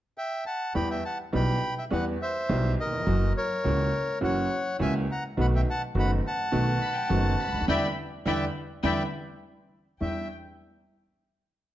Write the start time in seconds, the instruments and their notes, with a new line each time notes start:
0.18 bandoneon E5 G5
0.46 bandoneon F#5 A5
0.75 upright piano E2 E3 G3 B3 G4, upright bass E2, bandoneon G5 B5
0.90 bandoneon E5 G5
1.05 bandoneon F#5 A5
1.32 upright piano B1 B2 E3 G3 B3 G4, upright bass B1, bandoneon G5 B5
1.78 bandoneon E5 G5
1.90 upright piano E2 E3 G3 B3 G4, upright bass E2, bandoneon B4 F#5
2.22 bandoneon C5 E5
2.49 upright piano B1 B2 E3 G3 B3 G4, upright bass B1
2.80 bandoneon A#4 D#5
2.85 upright piano D#2
2.92 upright piano E2
2.99 upright piano F2
3.06 upright bass F#1, upright piano F#2 E3 F#3 A#3 C#4 F#4
3.37 bandoneon A#4 C#5
3.64 upright piano C#2 C#3 E3 A#3 C#4 F#4, upright bass C#2
4.21 upright bass F#1, upright piano F#2 E3 F#3 A#3 C#4 F#4, bandoneon F#5
4.25 bandoneon C#5
4.79 upright piano C#2 C#3 E3 A#3 C#4 F#4, upright bass C#2, bandoneon E5 G#5
5.11 bandoneon F#5 A#5
5.37 upright piano B1 B2 D#3 A3 B3 F#4, upright bass B1, bandoneon F#5 B5
5.56 bandoneon E5 G5
5.70 bandoneon F#5 A5
5.95 upright bass F#1, upright piano F#1 F#2 D#3 A3 B3 F#4
5.99 bandoneon F#5 B5
6.27 bandoneon F#5 A5
6.52 upright piano B1 B2 D#3 A3 B3 F#4, upright bass B1
6.82 violin section B5
6.96 violin section G5
7.09 upright piano F#1 F#2 D#3 A3 B3 F#4, upright bass F#1, violin section A5
7.40 violin section B5
7.46 upright piano C#2, upright bass C#2
7.54 upright bass D2, upright piano D2
7.61 upright bass D#2, upright piano D#2
7.68 upright bass E2, upright piano D3 E3 G3, bandoneon D5 E5 G5, violin section E5 G5 B5
8.25 upright bass E2, upright piano D3 E3 G3, bandoneon D5 E5 G5, violin section E5 G5 B5
8.83 upright bass E2, upright piano D3 E3 G3, bandoneon D5 E5 G5, violin section E5 G5 B5
10.01 upright bass E2, upright piano E2 G3 D4 E4, bandoneon E5, violin section G5